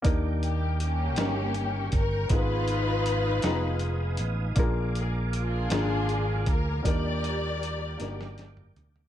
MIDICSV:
0, 0, Header, 1, 7, 480
1, 0, Start_track
1, 0, Key_signature, -3, "major"
1, 0, Tempo, 757576
1, 31, Time_signature, 6, 3, 24, 8
1, 5754, End_track
2, 0, Start_track
2, 0, Title_t, "Tonewheel organ"
2, 0, Program_c, 0, 16
2, 24, Note_on_c, 0, 79, 46
2, 26, Note_on_c, 0, 70, 48
2, 26, Note_on_c, 0, 86, 50
2, 737, Note_off_c, 0, 86, 0
2, 752, Note_on_c, 0, 85, 52
2, 1446, Note_off_c, 0, 79, 0
2, 1447, Note_off_c, 0, 70, 0
2, 1457, Note_on_c, 0, 77, 43
2, 1459, Note_off_c, 0, 85, 0
2, 1459, Note_on_c, 0, 71, 51
2, 1462, Note_on_c, 0, 80, 48
2, 1465, Note_on_c, 0, 87, 53
2, 2885, Note_off_c, 0, 71, 0
2, 2888, Note_off_c, 0, 87, 0
2, 2907, Note_on_c, 0, 86, 58
2, 2910, Note_on_c, 0, 70, 51
2, 4316, Note_off_c, 0, 77, 0
2, 4318, Note_off_c, 0, 80, 0
2, 4342, Note_on_c, 0, 74, 50
2, 4349, Note_on_c, 0, 79, 47
2, 5754, Note_off_c, 0, 70, 0
2, 5754, Note_off_c, 0, 74, 0
2, 5754, Note_off_c, 0, 79, 0
2, 5754, Note_off_c, 0, 86, 0
2, 5754, End_track
3, 0, Start_track
3, 0, Title_t, "String section"
3, 0, Program_c, 1, 48
3, 283, Note_on_c, 1, 67, 55
3, 499, Note_off_c, 1, 67, 0
3, 520, Note_on_c, 1, 67, 64
3, 526, Note_on_c, 1, 58, 54
3, 526, Note_on_c, 1, 61, 53
3, 1205, Note_off_c, 1, 67, 0
3, 1208, Note_off_c, 1, 58, 0
3, 1208, Note_off_c, 1, 61, 0
3, 1243, Note_on_c, 1, 70, 68
3, 1473, Note_off_c, 1, 70, 0
3, 1479, Note_on_c, 1, 71, 85
3, 1483, Note_on_c, 1, 65, 66
3, 1486, Note_on_c, 1, 63, 60
3, 2646, Note_off_c, 1, 65, 0
3, 2647, Note_off_c, 1, 63, 0
3, 2669, Note_off_c, 1, 71, 0
3, 3172, Note_on_c, 1, 68, 63
3, 3273, Note_off_c, 1, 68, 0
3, 3403, Note_on_c, 1, 62, 55
3, 3404, Note_on_c, 1, 65, 54
3, 3414, Note_on_c, 1, 68, 75
3, 4089, Note_off_c, 1, 62, 0
3, 4089, Note_off_c, 1, 65, 0
3, 4094, Note_off_c, 1, 68, 0
3, 4118, Note_on_c, 1, 70, 63
3, 4352, Note_off_c, 1, 70, 0
3, 4367, Note_on_c, 1, 74, 84
3, 4369, Note_on_c, 1, 67, 62
3, 4372, Note_on_c, 1, 70, 58
3, 5296, Note_off_c, 1, 67, 0
3, 5298, Note_off_c, 1, 70, 0
3, 5320, Note_off_c, 1, 74, 0
3, 5754, End_track
4, 0, Start_track
4, 0, Title_t, "Grand piano"
4, 0, Program_c, 2, 0
4, 15, Note_on_c, 2, 58, 75
4, 23, Note_on_c, 2, 62, 66
4, 28, Note_on_c, 2, 63, 63
4, 30, Note_on_c, 2, 51, 59
4, 32, Note_on_c, 2, 67, 57
4, 38, Note_on_c, 2, 70, 76
4, 143, Control_c, 2, 64, 127
4, 668, Note_off_c, 2, 58, 0
4, 672, Note_off_c, 2, 62, 0
4, 675, Note_off_c, 2, 63, 0
4, 677, Note_off_c, 2, 67, 0
4, 680, Note_off_c, 2, 70, 0
4, 721, Note_off_c, 2, 51, 0
4, 733, Note_on_c, 2, 58, 51
4, 743, Note_on_c, 2, 61, 45
4, 747, Note_on_c, 2, 43, 48
4, 747, Note_on_c, 2, 63, 44
4, 751, Note_on_c, 2, 67, 47
4, 756, Control_c, 2, 64, 0
4, 761, Note_on_c, 2, 70, 61
4, 865, Control_c, 2, 64, 127
4, 1386, Note_off_c, 2, 58, 0
4, 1391, Note_off_c, 2, 61, 0
4, 1393, Note_off_c, 2, 63, 0
4, 1395, Note_off_c, 2, 67, 0
4, 1400, Note_off_c, 2, 70, 0
4, 1438, Note_off_c, 2, 43, 0
4, 1446, Note_on_c, 2, 59, 57
4, 1456, Note_on_c, 2, 63, 53
4, 1463, Note_on_c, 2, 65, 55
4, 1465, Note_on_c, 2, 44, 49
4, 1465, Note_on_c, 2, 68, 54
4, 1472, Control_c, 2, 64, 0
4, 1474, Note_on_c, 2, 70, 54
4, 1510, Note_off_c, 2, 70, 0
4, 1514, Note_on_c, 2, 71, 59
4, 1588, Control_c, 2, 64, 127
4, 2102, Note_off_c, 2, 59, 0
4, 2107, Note_off_c, 2, 63, 0
4, 2111, Note_off_c, 2, 65, 0
4, 2112, Note_off_c, 2, 68, 0
4, 2136, Note_off_c, 2, 71, 0
4, 2157, Note_off_c, 2, 44, 0
4, 2167, Note_on_c, 2, 59, 64
4, 2172, Note_on_c, 2, 63, 55
4, 2179, Note_on_c, 2, 65, 57
4, 2184, Note_on_c, 2, 68, 58
4, 2190, Note_on_c, 2, 82, 69
4, 2823, Note_off_c, 2, 59, 0
4, 2826, Note_off_c, 2, 63, 0
4, 2829, Note_off_c, 2, 65, 0
4, 2831, Note_off_c, 2, 68, 0
4, 2834, Note_off_c, 2, 82, 0
4, 2886, Note_on_c, 2, 58, 68
4, 2890, Note_on_c, 2, 62, 65
4, 2899, Note_on_c, 2, 65, 65
4, 2900, Note_on_c, 2, 46, 58
4, 2904, Note_on_c, 2, 68, 66
4, 2909, Control_c, 2, 64, 0
4, 2911, Note_on_c, 2, 70, 81
4, 3031, Control_c, 2, 64, 127
4, 3543, Note_off_c, 2, 58, 0
4, 3545, Note_off_c, 2, 62, 0
4, 3550, Note_off_c, 2, 65, 0
4, 3553, Note_off_c, 2, 68, 0
4, 3556, Note_off_c, 2, 70, 0
4, 3596, Note_off_c, 2, 46, 0
4, 3599, Note_on_c, 2, 58, 54
4, 3606, Note_on_c, 2, 62, 48
4, 3616, Note_on_c, 2, 65, 46
4, 3618, Note_on_c, 2, 68, 53
4, 3622, Note_on_c, 2, 70, 59
4, 4261, Note_off_c, 2, 58, 0
4, 4265, Note_off_c, 2, 62, 0
4, 4270, Note_off_c, 2, 65, 0
4, 4271, Note_off_c, 2, 68, 0
4, 4273, Note_off_c, 2, 70, 0
4, 4325, Note_on_c, 2, 58, 61
4, 4331, Note_on_c, 2, 62, 59
4, 4337, Note_on_c, 2, 51, 46
4, 4338, Note_on_c, 2, 63, 54
4, 4340, Note_on_c, 2, 67, 51
4, 4351, Note_on_c, 2, 70, 62
4, 4354, Control_c, 2, 64, 0
4, 4445, Control_c, 2, 64, 127
4, 4987, Note_off_c, 2, 58, 0
4, 4990, Note_off_c, 2, 62, 0
4, 4993, Note_off_c, 2, 63, 0
4, 4994, Note_off_c, 2, 67, 0
4, 5000, Note_off_c, 2, 70, 0
4, 5038, Note_off_c, 2, 51, 0
4, 5053, Note_on_c, 2, 58, 62
4, 5056, Note_on_c, 2, 62, 57
4, 5066, Note_on_c, 2, 63, 54
4, 5072, Note_on_c, 2, 66, 46
4, 5077, Note_on_c, 2, 70, 67
4, 5111, Note_off_c, 2, 66, 0
4, 5117, Note_on_c, 2, 67, 58
4, 5713, Note_off_c, 2, 58, 0
4, 5714, Note_off_c, 2, 62, 0
4, 5719, Note_off_c, 2, 63, 0
4, 5725, Note_off_c, 2, 70, 0
4, 5745, Note_off_c, 2, 67, 0
4, 5754, End_track
5, 0, Start_track
5, 0, Title_t, "French horn section"
5, 0, Program_c, 3, 60
5, 46, Note_on_c, 3, 55, 51
5, 46, Note_on_c, 3, 58, 49
5, 51, Note_on_c, 3, 51, 58
5, 747, Note_off_c, 3, 58, 0
5, 770, Note_on_c, 3, 61, 58
5, 771, Note_on_c, 3, 58, 54
5, 1457, Note_off_c, 3, 55, 0
5, 1459, Note_off_c, 3, 51, 0
5, 1468, Note_off_c, 3, 61, 0
5, 1468, Note_on_c, 3, 59, 59
5, 1469, Note_off_c, 3, 58, 0
5, 1472, Note_on_c, 3, 53, 61
5, 1472, Note_on_c, 3, 56, 56
5, 1475, Note_on_c, 3, 63, 61
5, 2889, Note_off_c, 3, 59, 0
5, 2891, Note_off_c, 3, 53, 0
5, 2893, Note_off_c, 3, 63, 0
5, 2901, Note_on_c, 3, 58, 58
5, 2902, Note_on_c, 3, 53, 65
5, 2904, Note_on_c, 3, 65, 74
5, 4323, Note_off_c, 3, 56, 0
5, 4330, Note_off_c, 3, 53, 0
5, 4348, Note_on_c, 3, 55, 60
5, 5754, Note_off_c, 3, 55, 0
5, 5754, Note_off_c, 3, 58, 0
5, 5754, Note_off_c, 3, 65, 0
5, 5754, End_track
6, 0, Start_track
6, 0, Title_t, "Fingered electric bass"
6, 0, Program_c, 4, 33
6, 27, Note_on_c, 4, 39, 77
6, 740, Note_off_c, 4, 39, 0
6, 740, Note_on_c, 4, 31, 79
6, 1196, Note_off_c, 4, 31, 0
6, 1223, Note_on_c, 4, 31, 70
6, 1444, Note_off_c, 4, 31, 0
6, 1458, Note_on_c, 4, 32, 76
6, 2154, Note_off_c, 4, 32, 0
6, 2180, Note_on_c, 4, 29, 68
6, 2635, Note_off_c, 4, 29, 0
6, 2657, Note_on_c, 4, 33, 77
6, 2880, Note_off_c, 4, 33, 0
6, 2894, Note_on_c, 4, 34, 85
6, 3593, Note_off_c, 4, 34, 0
6, 3621, Note_on_c, 4, 32, 73
6, 4077, Note_off_c, 4, 32, 0
6, 4098, Note_on_c, 4, 38, 69
6, 4322, Note_off_c, 4, 38, 0
6, 4339, Note_on_c, 4, 39, 91
6, 5040, Note_off_c, 4, 39, 0
6, 5071, Note_on_c, 4, 31, 71
6, 5527, Note_off_c, 4, 31, 0
6, 5555, Note_on_c, 4, 38, 66
6, 5754, Note_off_c, 4, 38, 0
6, 5754, End_track
7, 0, Start_track
7, 0, Title_t, "Drums"
7, 29, Note_on_c, 9, 42, 65
7, 30, Note_on_c, 9, 36, 80
7, 92, Note_off_c, 9, 42, 0
7, 94, Note_off_c, 9, 36, 0
7, 271, Note_on_c, 9, 42, 38
7, 335, Note_off_c, 9, 42, 0
7, 507, Note_on_c, 9, 42, 55
7, 571, Note_off_c, 9, 42, 0
7, 738, Note_on_c, 9, 42, 59
7, 746, Note_on_c, 9, 38, 79
7, 801, Note_off_c, 9, 42, 0
7, 810, Note_off_c, 9, 38, 0
7, 978, Note_on_c, 9, 42, 33
7, 1042, Note_off_c, 9, 42, 0
7, 1216, Note_on_c, 9, 42, 50
7, 1222, Note_on_c, 9, 36, 75
7, 1279, Note_off_c, 9, 42, 0
7, 1285, Note_off_c, 9, 36, 0
7, 1454, Note_on_c, 9, 42, 70
7, 1459, Note_on_c, 9, 36, 81
7, 1517, Note_off_c, 9, 42, 0
7, 1522, Note_off_c, 9, 36, 0
7, 1696, Note_on_c, 9, 42, 41
7, 1759, Note_off_c, 9, 42, 0
7, 1938, Note_on_c, 9, 42, 54
7, 2001, Note_off_c, 9, 42, 0
7, 2169, Note_on_c, 9, 42, 68
7, 2178, Note_on_c, 9, 38, 77
7, 2233, Note_off_c, 9, 42, 0
7, 2242, Note_off_c, 9, 38, 0
7, 2404, Note_on_c, 9, 42, 33
7, 2468, Note_off_c, 9, 42, 0
7, 2644, Note_on_c, 9, 42, 51
7, 2708, Note_off_c, 9, 42, 0
7, 2888, Note_on_c, 9, 42, 68
7, 2894, Note_on_c, 9, 36, 82
7, 2951, Note_off_c, 9, 42, 0
7, 2957, Note_off_c, 9, 36, 0
7, 3139, Note_on_c, 9, 42, 41
7, 3202, Note_off_c, 9, 42, 0
7, 3378, Note_on_c, 9, 42, 51
7, 3442, Note_off_c, 9, 42, 0
7, 3614, Note_on_c, 9, 42, 66
7, 3622, Note_on_c, 9, 38, 87
7, 3677, Note_off_c, 9, 42, 0
7, 3686, Note_off_c, 9, 38, 0
7, 3858, Note_on_c, 9, 42, 31
7, 3922, Note_off_c, 9, 42, 0
7, 4096, Note_on_c, 9, 42, 48
7, 4099, Note_on_c, 9, 36, 75
7, 4159, Note_off_c, 9, 42, 0
7, 4163, Note_off_c, 9, 36, 0
7, 4341, Note_on_c, 9, 36, 77
7, 4343, Note_on_c, 9, 42, 76
7, 4404, Note_off_c, 9, 36, 0
7, 4406, Note_off_c, 9, 42, 0
7, 4588, Note_on_c, 9, 42, 41
7, 4651, Note_off_c, 9, 42, 0
7, 4834, Note_on_c, 9, 42, 61
7, 4898, Note_off_c, 9, 42, 0
7, 5067, Note_on_c, 9, 42, 65
7, 5075, Note_on_c, 9, 38, 43
7, 5130, Note_off_c, 9, 42, 0
7, 5139, Note_off_c, 9, 38, 0
7, 5200, Note_on_c, 9, 38, 44
7, 5263, Note_off_c, 9, 38, 0
7, 5308, Note_on_c, 9, 42, 33
7, 5317, Note_on_c, 9, 38, 57
7, 5372, Note_off_c, 9, 42, 0
7, 5381, Note_off_c, 9, 38, 0
7, 5430, Note_on_c, 9, 45, 51
7, 5493, Note_off_c, 9, 45, 0
7, 5553, Note_on_c, 9, 42, 49
7, 5554, Note_on_c, 9, 43, 73
7, 5616, Note_off_c, 9, 42, 0
7, 5618, Note_off_c, 9, 43, 0
7, 5675, Note_on_c, 9, 43, 69
7, 5739, Note_off_c, 9, 43, 0
7, 5754, End_track
0, 0, End_of_file